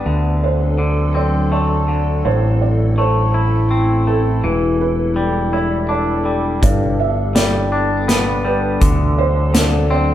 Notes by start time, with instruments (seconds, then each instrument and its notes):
Already playing: ambient pad D4, felt piano B4
0.06 picked electric bass D2, clean electric guitar D3, ambient pad F#3 C4 A4
0.43 felt piano C5
0.78 clean electric guitar D3
1.15 clean electric guitar C4, felt piano D5
1.52 clean electric guitar A3, felt piano D5
1.88 clean electric guitar D3
2.25 picked electric bass A1, clean electric guitar A2, ambient pad A3 E4 A4, felt piano C5
2.62 felt piano D5
2.98 clean electric guitar A3, felt piano C5
3.34 clean electric guitar E4
3.71 clean electric guitar C4
4.07 clean electric guitar A3, felt piano A4
4.44 picked electric bass E1, clean electric guitar E3, ambient pad G3 D4
4.81 felt piano B4
5.16 clean electric guitar G3
5.53 clean electric guitar E4, felt piano D5
5.89 clean electric guitar D4, felt piano D5
6.25 clean electric guitar G3
6.61 picked electric bass G1, clean electric guitar G2, ambient pad B3, felt piano D5, kick, closed hi-hat
7.00 felt piano E5
7.35 clean electric guitar G3, felt piano D5, snare, closed hi-hat
7.72 clean electric guitar D4
8.08 clean electric guitar B3, snare, closed hi-hat
8.45 clean electric guitar G3, felt piano B4
8.81 picked electric bass D2, clean electric guitar D3, ambient pad F#3 C4 A4, kick, closed hi-hat
9.18 felt piano C5
9.54 clean electric guitar D3, snare, closed hi-hat
9.91 clean electric guitar C4, felt piano D5